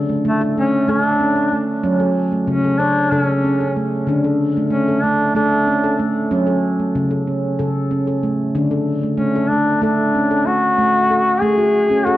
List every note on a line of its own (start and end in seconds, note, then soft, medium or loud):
0.00 0.18 D3 medium
0.09 0.24 A3 medium
0.25 0.56 A3 medium
0.25 0.41 A3 medium
0.41 0.57 A4 medium
0.58 0.86 A3 medium
0.58 0.91 C#4 medium
0.88 1.51 A3 medium
0.88 1.61 D4 medium
0.88 1.21 A4 medium
1.20 1.36 C#4 medium
1.36 1.52 A4 medium
1.52 1.84 A3 medium
1.84 2.41 F#3 medium
1.84 2.00 C#4 medium
2.00 2.32 A4 medium
2.32 2.64 A3 medium
2.47 3.04 C#3 medium
2.47 2.81 C#4 medium
2.64 2.80 A4 medium
2.79 3.11 D4 medium
2.79 3.12 C#5 medium
3.11 3.97 C#3 medium
3.11 3.22 D4 medium
3.11 3.44 A4 medium
3.22 3.83 C#4 medium
3.44 3.60 C#4 medium
3.60 3.76 A4 medium
3.76 4.08 A3 medium
4.07 4.64 D3 medium
4.07 4.24 D4 medium
4.24 4.56 A4 medium
4.57 4.69 A3 medium
4.70 5.03 A3 medium
4.70 5.05 C#4 medium
4.88 5.04 A4 medium
5.03 5.34 A3 medium
5.03 5.35 D4 medium
5.35 5.98 A3 medium
5.35 6.03 D4 medium
5.35 5.68 A4 medium
5.67 5.83 C#4 medium
5.84 5.99 A4 medium
5.99 6.31 A3 medium
6.31 6.88 F#3 medium
6.31 6.47 C#4 medium
6.47 6.79 A4 medium
6.79 7.11 A3 medium
6.95 7.52 C#3 medium
7.11 7.27 A4 medium
7.27 7.59 C#4 medium
7.59 8.44 C#3 medium
7.59 7.91 A4 medium
7.91 8.07 C#4 medium
8.07 8.23 A4 medium
8.23 8.55 A3 medium
8.55 9.12 D3 medium
8.55 8.71 D4 medium
8.71 9.03 A4 medium
9.03 9.16 A3 medium
9.17 9.51 A3 medium
9.17 9.50 C#4 medium
9.36 9.51 A4 medium
9.48 9.80 A3 medium
9.48 9.81 D4 medium
9.82 10.46 A3 medium
9.82 10.48 D4 medium
9.82 10.15 A4 medium
10.15 10.31 C#4 medium
10.31 10.47 A4 medium
10.46 10.77 A3 medium
10.46 11.43 F#4 medium
10.78 11.10 A3 medium
11.11 11.42 A4 medium
11.42 11.58 A3 medium
11.42 12.06 G#4 medium
11.58 11.90 F#4 medium
11.90 12.06 C#4 medium
12.05 12.17 F#4 medium
12.05 12.17 A4 medium